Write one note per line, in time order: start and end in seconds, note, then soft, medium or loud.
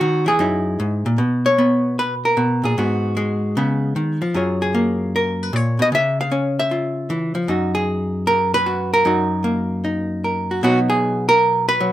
0.00 0.27 D#3 medium
0.00 0.26 F#4 medium
0.26 0.39 E3 medium
0.26 1.06 G#4 medium
0.39 0.79 F#2 medium
0.39 1.49 D#4 soft
0.39 1.17 E4 soft
0.80 1.05 G#2 medium
1.06 1.19 A#2 medium
1.18 2.36 B2 medium
1.46 1.98 C#5 medium
1.58 2.75 B3 medium
1.99 2.14 B4 medium
2.25 2.77 A#4 medium
2.37 2.63 B2 medium
2.64 2.76 A#2 medium
2.64 4.21 G#4 medium
2.78 3.54 G#2 medium
2.78 3.54 B3 soft
2.78 3.56 F#4 soft
3.17 4.21 G#3 medium
3.57 3.95 C#3 medium
3.57 4.33 B3 soft
3.96 4.21 D#3 medium
4.22 4.34 F3 medium
4.34 5.52 F#2 medium
4.34 5.90 F4 soft
4.34 4.61 G#4 soft
4.34 5.43 C#5 soft
4.62 5.13 G#4 medium
4.75 5.90 A#3 medium
5.16 5.79 A#4 medium
5.43 5.56 B4 medium
5.53 5.78 A#2 medium
5.53 5.80 C#5 medium
5.79 5.91 B2 medium
5.79 5.89 D#5 medium
5.92 7.47 C#3 medium
5.92 6.19 E5 loud
6.21 6.58 F5 medium
6.32 7.09 C#4 medium
6.59 7.36 E5 medium
6.71 7.47 F4 soft
7.10 7.34 E3 medium
7.35 7.48 F3 medium
7.48 9.04 F#2 medium
7.48 9.05 D#4 soft
7.48 7.74 F#4 soft
7.75 8.53 G#4 medium
8.27 8.53 A#4 medium
8.54 8.93 B4 loud
8.66 9.06 F#4 soft
8.94 10.23 A#4 medium
9.05 10.62 F#2 medium
9.05 9.83 D#4 soft
9.05 10.49 F#4 soft
9.44 10.60 A#3 medium
9.84 10.61 D#4 soft
10.24 10.61 A#4 soft
10.51 10.61 F#4 soft
10.63 11.92 B2 medium
10.63 11.80 F#3 soft
10.63 11.92 B3 soft
10.63 11.92 D#4 soft
10.63 10.79 F#4 medium
10.90 11.28 G#4 medium
11.29 11.67 A#4 loud
11.69 11.92 B4 loud
11.80 11.92 F#3 medium